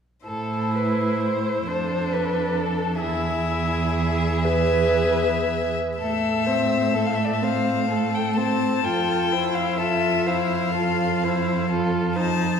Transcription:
0.26 cello A2, viola E4, violin A4 C5
0.75 violin B4
1.22 violin C5
1.67 cello F2, viola D4, violin A4 C5
2.13 violin B4
2.57 violin A4
3.00 cello E2, viola E4, violin G#4 E5
4.44 viola G#4, violin B4 E5
5.99 cello A2, viola A3, violin A4 E5
6.47 viola C4, violin C5
6.94 viola A3, violin A4
7.06 violin F5
7.15 violin E5
7.25 violin D5
7.33 violin E5
7.42 viola C4, violin C5 F5
7.90 viola A3, violin A4
8.15 violin G5
8.37 viola C4, violin C5 A5
8.85 cello F2, viola F4, violin A4 G5
9.32 viola E4, violin C5
9.55 violin F5
9.78 viola F4, violin A4 E5
10.26 viola E4, violin C5 F5
10.75 viola F4, violin A4
11.24 viola E4, violin C5
11.70 viola F4, violin A4
12.16 viola D#4, violin C5 A5

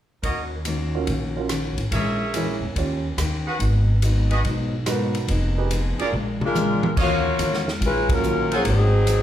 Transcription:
0.23 upright bass D#2, steel-string acoustic guitar D#3 A#3 C#4 F#4, trumpet section F#4 A#4 C#5 D#5, kick, ride
0.65 steel-string acoustic guitar D#3 A#3 C#4 F#4, hi-hat pedal, ride
0.95 grand piano C#4 F4 F#4 A#4
1.07 upright bass A#1, steel-string acoustic guitar D#3 A#3 C#4 F#4, kick, ride
1.37 grand piano C#4 F4 F#4 A#4
1.49 steel-string acoustic guitar D#3 A#3 C#4 F#4, cross-stick, hi-hat pedal, ride
1.77 upright bass A1, ride
1.91 upright bass A#1, steel-string acoustic guitar A#2 E3 G#3 C#4, trumpet section G#4 A#4 C#5 E5, kick, ride
2.34 steel-string acoustic guitar A#2 E3 G#3 C#4, grand piano C#4 E4 G#4 A#4, hi-hat pedal, ride
2.61 upright bass E2
2.75 upright bass D#2, steel-string acoustic guitar D#3 A#3 C#4 G4, grand piano C#4 F4 G4 C#5, kick, ride
3.17 upright bass D#2, steel-string acoustic guitar D#3 A#3 C#4 G4, cross-stick, hi-hat pedal, ride
3.46 trumpet section F#4 G#4 B4 F#5
3.59 upright bass G#1, steel-string acoustic guitar G#2 F#3 B3 D#4, kick, ride
4.02 steel-string acoustic guitar G#2 F#3 B3 D#4, hi-hat pedal, ride
4.30 trumpet section F#4 G#4 B4 D#5, ride
4.44 upright bass B1, steel-string acoustic guitar G#2 F#3 B3 D#4, kick, ride
4.86 steel-string acoustic guitar G#2 F#3 B3 D#4, grand piano D#4 F#4 A#4 B4, cross-stick, hi-hat pedal, ride
5.15 ride
5.28 upright bass F1, steel-string acoustic guitar F3 B3 D#4 G#4, kick, ride
5.58 grand piano D#4 G4 G#4 B4
5.71 steel-string acoustic guitar F3 B3 D#4 G#4, hi-hat pedal, ride
5.99 grand piano D4 F4 G#4 A#4, trumpet section F4 G#4 A#4 D5, ride
6.12 upright bass A#1, steel-string acoustic guitar A#2 G#3 D4 F4, mid tom
6.41 saxophone section G#3 D4 A#4, mid tom
6.46 saxophone section F4
6.55 steel-string acoustic guitar A#2 G#3 D4 F4, hi-hat pedal, high tom
6.83 high tom
6.96 upright bass D#2, steel-string acoustic guitar D#3 F#3 C#4 F4, trumpet section F#4 C#5 D#5 F5, kick, crash
7.01 saxophone section A#3 F4 F#4 C#5
7.38 upright bass E2, steel-string acoustic guitar D#3 F#3 C#4 F4, hi-hat pedal, ride
7.54 snare
7.68 snare
7.80 upright bass A#1, steel-string acoustic guitar D#3 F#3 C#4 F4, kick, ride
7.85 saxophone section G#3 C#4 F4 B4
8.09 grand piano F#3 A#3 C#4 F4, saxophone section F#3 C#4 F4 A#4, kick, ride
8.24 steel-string acoustic guitar D#3 F#3 C#4 F4, hi-hat pedal
8.51 saxophone section F3 A#3 C#4 G#4, trumpet section A4 C5 F#5 G#5, ride
8.64 upright bass G#1, steel-string acoustic guitar G#2 F#3 A3 C4, saxophone section F#3 D#4 G#4, kick, ride
8.69 saxophone section C4
9.06 steel-string acoustic guitar G#2 F#3 A3 C4, hi-hat pedal, ride

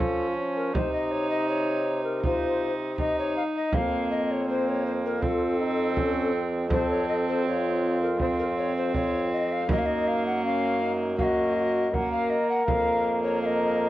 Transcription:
Already playing: bassoon F3, recorder A4
0.00 viola C#4, trombone F4, frame drum
0.37 trombone C#4
0.57 recorder A#4
0.74 bassoon C3, viola D#4, trombone D#4, recorder C5, frame drum
0.93 recorder D#5
1.11 recorder C#5
1.30 recorder D#5
1.49 recorder C#5
2.05 recorder A#4
2.23 viola D#4, trombone F4, recorder C5, frame drum
2.98 trombone D#4, viola D#4, recorder D#5, frame drum
3.19 recorder C#5
3.37 recorder F5
3.56 recorder D#5
3.72 bassoon F2, viola A#3, trombone C4, recorder F5, frame drum
4.11 recorder D#5
4.31 recorder C#5
4.47 viola A#3, recorder C5
4.68 recorder C#5
4.86 recorder C5
5.06 recorder A#4
5.21 viola C4, trombone F4, recorder A4, frame drum
5.59 trombone D#4
5.96 trombone C#4, frame drum
6.33 trombone C4
6.70 viola C4, trombone A4, recorder C5, frame drum
6.90 recorder C#5
7.09 recorder D#5
7.28 recorder C5
7.45 trombone F4, recorder C#5
8.02 recorder A#4
8.19 viola C4, recorder C5, frame drum
8.39 recorder A#4
8.57 recorder C#5
8.77 recorder C5
8.94 trombone F4, recorder C#5, frame drum
9.33 recorder D#5
9.52 recorder F5
9.69 bassoon F#2, viola A#3, trombone D#4, recorder D#5, frame drum
9.78 recorder F5
9.86 recorder D#5
10.07 recorder F5
10.26 recorder F#5
10.44 trombone C#4, recorder F5
10.81 trombone D#4
11.19 viola A#3, trombone F#4, recorder F5, frame drum
11.23 recorder D#5
11.56 trombone F#4
11.93 viola A#3, trombone A#4, recorder F#5, frame drum
12.12 recorder F5
12.30 recorder D#5
12.49 recorder F#5
12.66 bassoon F2, viola A#3, recorder F5, frame drum
13.23 recorder C#5
13.41 trombone A#4, recorder F5
13.46 recorder D#5

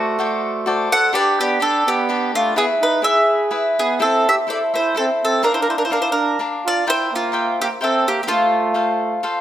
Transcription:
Already playing: trumpet A3, cavaquinho F#4 A4 C5 D5, mandolin F#4
0.19 cavaquinho F#4 A4 C5 D5
0.66 cavaquinho F#4 A4 C5 D5
0.92 trumpet A4, mandolin F#5
1.13 cavaquinho D4 G4 B4 D5, trumpet G4, mandolin D5
1.40 trumpet B3, mandolin G4
1.60 cavaquinho D4 G4 B4 D5, trumpet D4, mandolin A4
1.87 trumpet B3, mandolin G4
2.09 cavaquinho D4 G4 B4 D5
2.34 trumpet A3, mandolin F4
2.56 trumpet B3, cavaquinho E4 G#4 B4 E5, mandolin G#4
2.81 trumpet D#4, mandolin B4
3.02 cavaquinho E4 G#4 B4 E5, trumpet G#4, mandolin E5
3.51 cavaquinho E4 G#4 B4 E5
3.79 trumpet B3, mandolin G#4
3.99 trumpet C4, cavaquinho E4 A4 C5 E5, mandolin A4
4.29 trumpet G4, mandolin E5
4.47 cavaquinho E4 A4 C5 E5, mandolin D5
4.51 trumpet A4
4.74 trumpet E4, cavaquinho A4 C5 E5, mandolin C5
4.95 cavaquinho E4 A4 C5 E5, mandolin A4
4.99 trumpet C4
5.25 trumpet C4, mandolin A4
5.43 cavaquinho D4 A#4 D5 F5, trumpet D4, mandolin A#4
5.54 trumpet E4, mandolin C5
5.61 trumpet D4, mandolin A#4
5.69 trumpet E4, mandolin C5
5.78 trumpet D4, mandolin A#4
5.85 trumpet E4, mandolin C5
5.90 cavaquinho D4 A#4 D5 F5, trumpet D4, mandolin A#4
6.01 trumpet E4, mandolin C5
6.12 trumpet D4, mandolin A#4
6.39 cavaquinho D4 A#4 D5 F5
6.66 trumpet F4, mandolin D5
6.87 trumpet E4, cavaquinho A#4 C5 E5 G5, mandolin C5
7.13 trumpet A#3, mandolin F4
7.32 cavaquinho A#4 C5 E5 G5
7.61 trumpet A#3, mandolin G4
7.81 trumpet C4, mandolin A4, cavaquinho A#4 C5 E5 G5
8.08 trumpet A#3, mandolin G4
8.23 trumpet A#3, mandolin G4
8.27 trumpet A3, cavaquinho F4 A4 C5 F5, mandolin F4
8.74 cavaquinho F4 A4 C5 F5
9.23 cavaquinho F4 A4 C5 F5

